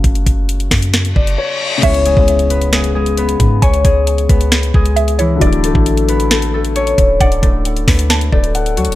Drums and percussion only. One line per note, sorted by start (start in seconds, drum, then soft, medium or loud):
0.04 kick loud
0.04 closed hi-hat medium
0.15 closed hi-hat medium
0.26 kick medium
0.26 closed hi-hat medium
0.49 closed hi-hat medium
0.60 closed hi-hat medium
0.71 kick medium
0.71 snare medium
0.71 closed hi-hat soft
0.71 open hi-hat medium
0.82 closed hi-hat medium
0.94 snare loud
0.94 closed hi-hat medium
1.05 closed hi-hat medium
1.16 kick loud
1.27 closed hi-hat medium
1.83 kick loud
1.83 closed hi-hat medium
1.83 crash loud
1.94 closed hi-hat medium
2.06 closed hi-hat medium
2.17 kick loud
2.28 closed hi-hat medium
2.39 closed hi-hat medium
2.50 closed hi-hat medium
2.61 closed hi-hat medium
2.73 snare loud
2.73 closed hi-hat medium
2.84 closed hi-hat medium
3.06 closed hi-hat medium
3.17 closed hi-hat medium
3.29 closed hi-hat medium
3.40 kick loud
3.40 closed hi-hat medium
3.62 kick loud
3.62 closed hi-hat medium
3.74 closed hi-hat medium
3.85 kick medium
3.85 closed hi-hat medium
4.07 closed hi-hat medium
4.18 closed hi-hat medium
4.29 kick medium
4.29 closed hi-hat medium
4.41 closed hi-hat medium
4.52 snare loud
4.52 closed hi-hat medium
4.63 closed hi-hat medium
4.74 kick medium
4.86 closed hi-hat medium
4.97 closed hi-hat medium
5.08 closed hi-hat medium
5.19 closed hi-hat medium
5.41 kick loud
5.41 closed hi-hat medium
5.53 closed hi-hat medium
5.64 closed hi-hat medium
5.75 kick loud
5.86 closed hi-hat medium
5.97 closed hi-hat medium
6.09 closed hi-hat medium
6.20 closed hi-hat medium
6.31 snare loud
6.31 closed hi-hat medium
6.42 closed hi-hat medium
6.65 closed hi-hat medium
6.76 closed hi-hat medium
6.87 closed hi-hat medium
6.98 kick loud
6.98 closed hi-hat medium
7.21 kick loud
7.21 closed hi-hat medium
7.32 closed hi-hat medium
7.43 kick loud
7.43 closed hi-hat medium
7.65 closed hi-hat medium
7.77 closed hi-hat medium
7.88 kick loud
7.88 snare loud
7.88 closed hi-hat medium
7.88 open hi-hat medium
7.99 closed hi-hat medium
8.10 snare loud
8.10 closed hi-hat medium
8.21 closed hi-hat medium
8.32 kick medium
8.44 closed hi-hat medium
8.55 closed hi-hat medium
8.66 closed hi-hat medium
8.77 closed hi-hat medium
8.85 closed hi-hat medium